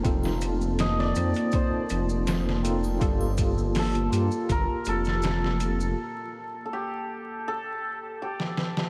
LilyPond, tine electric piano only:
\new Staff \with { instrumentName = "Tine electric piano" } { \time 4/4 \key g \minor \tempo 4 = 81 <c' ees' f' a'>4. <c' ees' f' c''>2 <c' ees' f' a'>8 | <bes f' g' a'>4. <bes f' g'>2~ <bes f' g'>8 | r1 | }